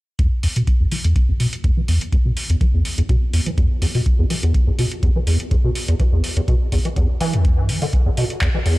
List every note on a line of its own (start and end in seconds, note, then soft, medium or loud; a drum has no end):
0.19 0.30 E2 medium
0.19 kick loud
0.19 closed hi-hat medium
0.43 0.47 E2 medium
0.43 open hi-hat loud
0.56 0.62 B2 medium
0.56 closed hi-hat medium
0.67 kick loud
0.67 closed hi-hat medium
0.80 0.86 E2 medium
0.92 0.96 E3 medium
0.92 open hi-hat loud
1.04 1.14 E2 medium
1.04 closed hi-hat medium
1.16 kick loud
1.16 closed hi-hat medium
1.29 1.32 E2 medium
1.40 1.47 B2 medium
1.40 open hi-hat loud
1.53 closed hi-hat medium
1.64 1.71 E2 medium
1.64 kick loud
1.64 closed hi-hat medium
1.77 1.81 E3 medium
1.88 1.99 E2 medium
1.88 open hi-hat loud
2.01 closed hi-hat medium
2.13 2.17 E2 medium
2.13 kick loud
2.13 closed hi-hat soft
2.25 2.32 B2 medium
2.37 open hi-hat loud
2.50 2.56 E2 medium
2.50 closed hi-hat medium
2.61 2.65 E3 medium
2.61 kick loud
2.61 closed hi-hat soft
2.74 2.83 E2 medium
2.85 open hi-hat loud
2.98 3.02 E2 medium
2.98 closed hi-hat medium
3.09 3.16 B2 medium
3.09 kick loud
3.09 closed hi-hat medium
3.33 3.41 E2 medium
3.33 open hi-hat loud
3.46 3.50 E3 medium
3.46 closed hi-hat medium
3.58 3.68 E2 medium
3.58 kick loud
3.58 closed hi-hat medium
3.82 3.86 E2 medium
3.82 open hi-hat loud
3.95 4.01 B2 medium
3.95 open hi-hat medium
4.06 kick loud
4.06 closed hi-hat soft
4.19 4.25 E2 medium
4.30 4.35 E3 medium
4.30 open hi-hat loud
4.43 4.52 E2 medium
4.43 closed hi-hat medium
4.54 kick loud
4.54 closed hi-hat soft
4.67 4.71 E2 medium
4.79 4.86 B2 medium
4.79 open hi-hat loud
4.92 closed hi-hat medium
5.03 5.10 E2 medium
5.03 kick loud
5.03 closed hi-hat medium
5.16 5.19 E3 medium
5.27 5.38 E2 medium
5.27 open hi-hat loud
5.40 closed hi-hat medium
5.51 5.55 E2 medium
5.51 kick loud
5.51 closed hi-hat soft
5.64 5.70 B2 medium
5.75 open hi-hat loud
5.88 5.95 E2 medium
5.88 closed hi-hat medium
6.00 6.04 E3 medium
6.00 kick loud
6.00 closed hi-hat soft
6.12 6.22 E2 medium
6.24 open hi-hat loud
6.37 6.40 E2 medium
6.37 closed hi-hat medium
6.48 6.55 B2 medium
6.48 kick loud
6.48 closed hi-hat soft
6.72 6.79 E2 medium
6.72 kick medium
6.72 open hi-hat loud
6.85 6.89 E3 medium
6.85 closed hi-hat medium
6.96 7.07 E2 medium
6.96 kick loud
6.96 closed hi-hat soft
7.21 7.35 E3 loud
7.21 open hi-hat loud
7.33 7.59 E2 medium
7.33 closed hi-hat medium
7.45 kick loud
7.45 closed hi-hat soft
7.58 7.71 G2 medium
7.69 7.80 E3 medium
7.69 open hi-hat loud
7.82 7.86 D3 medium
7.82 open hi-hat medium
7.93 kick loud
7.93 closed hi-hat soft
8.06 8.10 E2 medium
8.17 8.24 B2 medium
8.17 open hi-hat loud
8.30 closed hi-hat medium
8.41 8.49 E2 medium
8.41 kick loud
8.41 clap loud
8.41 closed hi-hat soft
8.54 8.58 E3 medium
8.66 8.76 E2 medium
8.66 open hi-hat loud